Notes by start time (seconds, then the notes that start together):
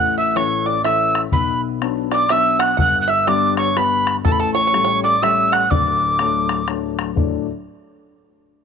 Already playing: A1 A2 F#5 F#6
0.18 E5 E6
0.36 E3 A3 C#4 C#5 C#6, bodhran
0.66 D5 D6
0.84 E3 A3 C#4 E5 E6, bodhran
1.15 bodhran
1.32 B1 B2 B4 B5, bodhran
1.81 F#3 B3 D4, bodhran
2.11 D5 D6, bodhran
2.29 F#3 B3 D4 E5 E6, bodhran
2.59 F#5 F#6, bodhran
2.77 G1 G2 F#5 F#6, bodhran
3.02 F#6
3.08 E5 E6
3.27 G3 B3 D4 D5 D6, bodhran
3.57 C#5 C#6, bodhran
3.76 G3 B3 D4 B4 B5, bodhran
4.07 bodhran
4.25 A1 A2 A4 A5, bodhran
4.32 B5
4.40 A4 A5
4.54 C#5 C#6
4.67 C#5
4.73 G3 A3 C#4, bodhran
4.84 C#5
5.04 D5 D6
5.22 G3 A3 C#4 E5 E6, bodhran
5.52 F#5 F#6, bodhran
5.70 D1 D2 D5 D6, bodhran
6.19 F#3 A3 D4, bodhran
6.49 bodhran
6.68 F#3 A3 D4, bodhran
6.99 bodhran
7.16 D2 A2 F#3 D4 A4 D5, bodhran